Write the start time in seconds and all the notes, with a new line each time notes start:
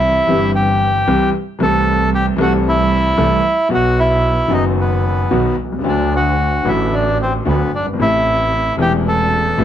Already playing: C2 C3 E3 G3 C4 E4 G4
0.27 G1 G2 E3 G3 C4 G4
0.55 G4
1.07 C2 C3 E3 G3 C4 G4
1.59 C2 C3 E3 A3 C4 A4
2.15 G4
2.37 C2 C3 E3 A3 C4
2.41 F#4 A4
2.69 E4
3.18 C2 C3 E3 A3 C4 A4
3.69 B1 B2 F#3 B3 F#4
3.74 F#4
3.99 E4
4.48 F#1 F#2 D#3 F#3 B3 F#4
4.53 D#4
4.80 B3
5.31 B1 B2 D#3 F#3 B3 F#4
5.59 C2
5.65 B1
5.73 C2
5.79 C#2
5.84 D2 D3 F#3 A3 F#4
5.88 D4
6.16 F#4
6.63 A1 A2 D3 F#3 A3
6.67 E4 F#4
6.94 D4
7.22 C4
7.45 D2 D3 F#3 A3 B3 F#4
7.73 G1 D4
7.80 F#1
7.87 G1
7.93 G#1
7.98 A1 A2 C3 E3 A3 E4
8.76 E1 E2 C3 E3 A3
8.81 E4 G4
9.08 A4
9.58 A1 A2 C3 E3 A3 E4